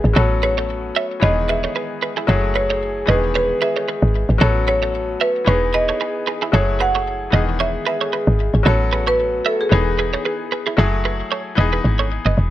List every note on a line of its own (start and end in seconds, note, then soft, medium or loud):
0.00 0.14 D#3 medium
0.00 0.12 E3 medium
0.00 0.15 G#3 medium
0.00 0.13 B3 medium
0.00 0.15 B3 medium
0.00 0.15 G#4 medium
0.00 0.19 E5 loud
0.04 0.14 G#1 medium
0.13 0.92 A1 loud
0.13 1.19 F#3 medium
0.13 1.21 A3 medium
0.13 1.20 B3 medium
0.13 1.21 C#4 medium
0.13 1.20 C#4 medium
0.13 1.21 F#4 medium
0.13 0.27 F#4 medium
0.13 0.26 A4 medium
0.13 0.41 C#5 loud
0.18 1.21 A4 medium
0.43 0.54 G#4 medium
0.43 0.53 B4 medium
0.43 0.95 C#5 medium
0.58 0.66 A4 medium
0.58 0.66 C#5 medium
0.96 1.23 C#5 medium
0.96 1.07 C#5 medium
0.96 1.06 E5 medium
1.20 1.67 E1 loud
1.20 2.27 D#3 medium
1.20 2.25 E3 medium
1.20 2.27 G#3 medium
1.20 2.26 B3 medium
1.20 2.27 B3 medium
1.20 4.38 G#4 medium
1.20 1.33 G#4 medium
1.20 1.33 C#5 medium
1.20 1.34 D#5 loud
1.25 2.28 G#4 medium
1.49 1.60 G#4 medium
1.49 1.59 B4 medium
1.49 2.25 E5 loud
1.64 1.72 A4 medium
1.64 1.72 C#5 medium
1.76 1.86 G#4 medium
1.76 1.86 B4 medium
2.02 2.13 G#4 medium
2.02 2.12 B4 medium
2.17 2.26 E4 medium
2.17 2.25 G#4 medium
2.27 3.04 F#1 loud
2.27 3.07 F#3 medium
2.27 3.08 A3 medium
2.27 3.07 A3 medium
2.27 3.07 E4 medium
2.27 3.08 E4 medium
2.27 2.39 F#4 medium
2.27 3.09 G#4 medium
2.27 2.39 A4 medium
2.27 2.53 C#5 loud
2.55 2.66 G#4 medium
2.55 2.66 B4 medium
2.55 3.05 C#5 medium
2.70 2.79 A4 medium
2.70 2.78 C#5 medium
3.06 3.53 E1 loud
3.06 4.39 D#3 medium
3.06 4.37 E3 medium
3.06 4.40 G#3 medium
3.06 4.38 B3 medium
3.06 4.39 B3 medium
3.06 3.34 B4 medium
3.06 3.19 B4 medium
3.06 3.19 D#5 medium
3.11 4.39 G#4 medium
3.35 3.46 G#4 medium
3.35 3.60 B4 loud
3.35 3.45 C#5 loud
3.62 3.72 G#4 medium
3.62 3.72 B4 medium
3.62 4.43 E5 loud
3.76 3.85 A4 medium
3.76 3.85 C#5 medium
3.88 4.07 G#4 medium
3.88 4.07 B4 medium
4.02 4.25 G#1 medium
4.29 4.39 G#1 medium
4.38 5.17 A1 loud
4.38 5.44 F#3 medium
4.38 5.46 A3 medium
4.38 5.44 B3 medium
4.38 5.46 C#4 medium
4.38 5.45 C#4 medium
4.38 5.46 F#4 medium
4.38 4.52 F#4 medium
4.38 4.51 A4 medium
4.38 4.53 C#5 loud
4.43 5.46 A4 medium
4.68 4.78 G#4 medium
4.68 4.78 B4 medium
4.68 5.22 C#5 loud
4.83 4.91 A4 medium
4.83 4.91 C#5 medium
5.21 5.45 B4 medium
5.21 5.32 C#5 medium
5.21 5.31 E5 medium
5.44 5.92 E1 loud
5.44 6.50 E3 medium
5.44 6.52 E3 medium
5.44 6.51 B3 medium
5.44 6.52 D#4 medium
5.44 6.51 D#4 medium
5.44 6.52 G#4 medium
5.44 5.58 G#4 medium
5.44 5.59 B4 loud
5.44 5.58 C#5 medium
5.49 6.52 G#4 medium
5.74 5.85 G#4 medium
5.74 5.84 B4 medium
5.74 6.56 D#5 loud
5.89 5.97 A4 medium
5.89 5.97 C#5 medium
6.01 6.11 G#4 medium
6.01 6.11 B4 medium
6.27 6.38 G#4 medium
6.27 6.37 B4 medium
6.42 6.51 E4 medium
6.42 6.50 G#4 medium
6.52 7.29 F#1 loud
6.52 7.32 F#3 medium
6.52 7.33 A3 medium
6.52 7.32 A3 medium
6.52 7.32 E4 medium
6.52 7.33 E4 medium
6.52 6.64 F#4 medium
6.52 7.32 G#4 medium
6.52 7.33 G#4 medium
6.52 6.64 A4 medium
6.52 6.66 C#5 loud
6.80 6.91 G#4 medium
6.80 6.90 B4 medium
6.80 7.56 F#5 loud
6.95 7.04 A4 medium
6.95 7.03 C#5 medium
7.30 7.78 E1 loud
7.30 8.63 D#3 medium
7.30 8.62 E3 medium
7.30 8.64 G#3 medium
7.30 8.63 B3 medium
7.30 8.64 B3 medium
7.30 8.64 G#4 medium
7.30 7.44 B4 medium
7.30 7.43 D#5 medium
7.35 8.64 G#4 medium
7.60 7.70 G#4 medium
7.60 7.70 C#5 medium
7.60 7.86 E5 loud
7.86 7.97 G#4 medium
7.86 7.96 B4 medium
7.86 8.36 E5 loud
8.01 8.10 A4 medium
8.01 8.09 C#5 medium
8.13 8.32 G#4 medium
8.13 8.31 B4 medium
8.27 8.49 G#1 loud
8.54 8.64 G#1 medium
8.63 9.41 A1 loud
8.63 9.68 F#3 medium
8.63 9.71 A3 medium
8.63 9.69 B3 medium
8.63 9.71 C#4 medium
8.63 9.70 C#4 medium
8.63 9.71 F#4 medium
8.63 8.77 F#4 medium
8.63 8.76 A4 medium
8.63 9.04 C#5 loud
8.68 9.71 A4 medium
8.93 9.03 G#4 medium
8.93 9.03 B4 medium
9.07 9.16 A4 medium
9.07 9.47 B4 loud
9.07 9.15 C#5 medium
9.46 9.59 A4 medium
9.46 9.56 C#5 medium
9.46 9.56 E5 medium
9.61 10.48 G#4 medium
9.69 10.16 E1 loud
9.69 10.75 E3 medium
9.69 10.77 E3 medium
9.69 10.75 B3 medium
9.69 10.77 D#4 medium
9.69 10.76 D#4 medium
9.69 10.77 G#4 medium
9.69 9.82 C#5 medium
9.73 9.83 G#4 medium
9.73 10.77 G#4 medium
9.99 10.09 G#4 medium
9.99 10.09 B4 medium
10.13 10.22 A4 medium
10.13 10.22 C#5 medium
10.25 10.36 G#4 medium
10.25 10.35 B4 medium
10.52 10.63 G#4 medium
10.52 10.62 B4 medium
10.67 10.75 E4 medium
10.67 10.75 G#4 medium
10.77 11.23 F#1 loud
10.77 11.57 F#3 medium
10.77 11.57 A3 medium
10.77 11.58 E4 medium
10.77 10.89 F#4 medium
10.77 11.58 G#4 medium
10.77 10.88 A4 loud
11.05 11.16 G#4 medium
11.05 11.15 B4 medium
11.32 11.42 A4 medium
11.32 11.42 C#5 medium
11.55 11.80 E1 loud
11.55 12.50 E3 medium
11.55 12.50 B3 medium
11.55 12.50 D#4 medium
11.55 11.69 B4 medium
11.55 11.68 D#5 medium
11.60 12.37 G#4 medium
11.73 11.81 G#4 medium
11.73 11.81 B4 medium
11.84 12.19 G#1 medium
11.99 12.08 A4 medium
11.99 12.07 C#5 medium
12.25 12.35 F#1 medium
12.25 12.35 B4 medium
12.25 12.34 D#5 medium
12.37 12.50 E1 loud